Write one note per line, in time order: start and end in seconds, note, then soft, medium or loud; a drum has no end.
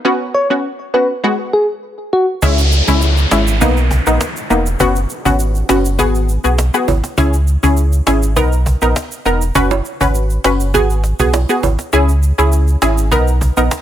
0.05 0.46 B3 medium
0.05 0.47 C#4 medium
0.05 0.47 F#4 loud
0.34 0.48 C#5 medium
0.50 0.67 B3 medium
0.50 0.67 C#4 medium
0.50 0.67 F#4 medium
0.94 1.12 B3 medium
0.94 1.12 C#4 medium
0.94 1.12 F#4 medium
0.94 1.07 B4 medium
1.24 2.33 G#3 medium
1.24 2.34 B3 medium
1.24 2.34 F#4 loud
1.53 1.66 G#4 medium
2.13 2.26 F#4 medium
2.42 2.82 C#2 loud
2.42 2.61 G#3 medium
2.42 2.61 C#4 medium
2.42 2.61 E4 loud
2.42 cajon bass loud
2.42 downlifter medium
2.42 shaker medium
2.58 shaker medium
2.72 shaker medium
2.88 3.26 C#2 medium
2.88 3.28 G#3 medium
2.88 3.28 C#4 medium
2.88 3.28 E4 medium
2.88 cajon bass medium
2.88 shaker medium
3.02 cajon slap soft
3.02 shaker medium
3.17 shaker soft
3.31 3.63 G#1 medium
3.31 3.59 G#3 medium
3.31 3.59 C#4 medium
3.31 3.59 E4 medium
3.31 cajon slap loud
3.31 shaker medium
3.47 shaker medium
3.61 4.00 B1 loud
3.61 4.03 A#3 medium
3.61 4.03 B3 medium
3.61 4.03 D#4 loud
3.61 cajon bass medium
3.61 shaker medium
3.77 shaker soft
3.91 cajon bass medium
3.91 cajon slap medium
3.91 shaker medium
4.07 4.19 A#1 medium
4.07 4.23 A#3 medium
4.07 4.24 B3 medium
4.07 4.24 D#4 medium
4.07 shaker medium
4.21 cajon slap loud
4.21 shaker medium
4.36 shaker medium
4.50 4.76 E1 medium
4.50 4.68 A#3 medium
4.50 4.69 B3 medium
4.50 4.69 D#4 medium
4.50 shaker soft
4.66 shaker medium
4.80 5.06 F#1 loud
4.80 4.98 B3 medium
4.80 4.98 C#4 medium
4.80 4.99 F#4 loud
4.80 cajon bass loud
4.80 shaker medium
4.96 shaker medium
5.10 shaker medium
5.25 5.63 G#1 medium
5.25 5.66 B3 medium
5.25 5.66 C#4 medium
5.25 5.66 F#4 medium
5.25 cajon bass medium
5.25 shaker medium
5.39 cajon slap soft
5.39 shaker medium
5.55 shaker soft
5.69 6.00 F#1 medium
5.69 5.97 B3 medium
5.69 5.97 C#4 medium
5.69 5.97 F#4 medium
5.69 cajon slap loud
5.69 shaker medium
5.85 shaker medium
5.99 6.38 G#1 loud
5.99 6.40 B3 medium
5.99 6.41 F#4 medium
5.99 6.41 G#4 loud
5.99 cajon bass loud
5.99 shaker medium
6.15 shaker soft
6.29 shaker medium
6.44 6.70 B1 medium
6.44 6.61 B3 medium
6.44 6.61 F#4 medium
6.44 6.61 G#4 medium
6.44 shaker medium
6.58 cajon slap loud
6.58 shaker medium
6.74 6.91 B3 medium
6.74 6.91 F#4 medium
6.74 6.91 G#4 medium
6.74 shaker medium
6.88 7.02 G#1 loud
6.88 cajon bass medium
6.88 high timbale medium
6.88 shaker soft
7.04 cajon slap medium
7.04 shaker medium
7.18 7.57 C#2 loud
7.18 7.36 C#4 medium
7.18 7.36 E4 medium
7.18 7.36 G#4 loud
7.18 cajon bass loud
7.18 shaker medium
7.33 shaker medium
7.47 shaker medium
7.63 8.01 C#2 medium
7.63 8.03 C#4 medium
7.63 8.04 E4 medium
7.63 8.04 G#4 medium
7.63 cajon bass medium
7.63 shaker medium
7.77 cajon slap soft
7.77 shaker medium
7.92 shaker soft
8.07 8.38 G#1 medium
8.07 8.34 C#4 medium
8.07 8.34 E4 medium
8.07 8.35 G#4 medium
8.07 cajon slap loud
8.07 shaker medium
8.23 shaker medium
8.36 8.76 B1 loud
8.36 8.78 B3 medium
8.36 8.78 D#4 medium
8.36 8.78 A#4 loud
8.36 cajon bass medium
8.36 shaker medium
8.52 shaker soft
8.66 cajon bass medium
8.66 cajon slap medium
8.66 shaker medium
8.82 8.94 A#1 medium
8.82 8.99 B3 medium
8.82 8.99 D#4 medium
8.82 8.99 A#4 medium
8.82 shaker medium
8.96 cajon slap loud
8.96 shaker medium
9.12 shaker soft
9.25 9.51 E1 medium
9.25 9.44 B3 medium
9.25 9.44 D#4 medium
9.25 9.44 A#4 medium
9.25 shaker soft
9.41 shaker medium
9.55 9.81 F#1 loud
9.55 9.74 C#4 medium
9.55 9.74 F#4 medium
9.55 9.74 B4 loud
9.55 cajon bass loud
9.55 shaker medium
9.71 high timbale medium
9.71 shaker medium
9.85 shaker medium
10.01 10.38 G#1 medium
10.01 10.41 C#4 medium
10.01 10.41 F#4 medium
10.01 10.41 B4 medium
10.01 cajon bass loud
10.01 shaker medium
10.15 cajon slap soft
10.15 shaker medium
10.30 shaker soft
10.44 10.76 F#1 medium
10.44 10.72 C#4 medium
10.44 10.72 F#4 medium
10.44 10.72 B4 medium
10.44 cajon slap loud
10.44 shaker medium
10.60 shaker medium
10.74 11.13 G#1 loud
10.74 11.16 B3 medium
10.74 11.16 F#4 medium
10.74 11.16 G#4 loud
10.74 cajon bass medium
10.74 shaker medium
10.90 shaker soft
11.04 cajon slap medium
11.04 shaker medium
11.19 11.45 B1 medium
11.19 11.36 B3 medium
11.19 11.36 F#4 medium
11.19 11.37 G#4 medium
11.19 cajon bass medium
11.19 shaker medium
11.33 cajon slap loud
11.33 high timbale soft
11.33 shaker medium
11.49 11.66 B3 medium
11.49 11.66 F#4 medium
11.49 11.66 G#4 medium
11.49 shaker medium
11.63 11.77 G#1 loud
11.63 cajon bass medium
11.63 high timbale medium
11.63 shaker soft
11.79 cajon slap medium
11.79 shaker medium
11.93 12.32 C#2 loud
11.93 12.11 C#4 medium
11.93 12.11 E4 medium
11.93 12.11 G#4 loud
11.93 cajon slap soft
11.93 shaker medium
12.09 shaker medium
12.23 shaker medium
12.38 12.76 C#2 medium
12.38 12.79 C#4 medium
12.38 12.79 E4 medium
12.38 12.79 G#4 medium
12.38 shaker medium
12.52 cajon slap soft
12.52 shaker medium
12.68 shaker soft
12.82 13.13 G#1 medium
12.82 13.09 C#4 medium
12.82 13.10 E4 medium
12.82 13.10 G#4 medium
12.82 cajon slap loud
12.82 shaker medium
12.98 shaker medium
13.11 13.51 B1 loud
13.11 13.53 B3 loud
13.11 13.53 D#4 medium
13.11 13.54 A#4 loud
13.11 cajon bass medium
13.11 shaker medium
13.27 shaker soft
13.41 cajon bass medium
13.41 cajon slap medium
13.41 shaker medium
13.57 13.69 A#1 medium
13.57 13.74 B3 medium
13.57 13.74 D#4 medium
13.57 13.74 A#4 medium
13.57 shaker medium
13.71 cajon slap loud
13.71 shaker medium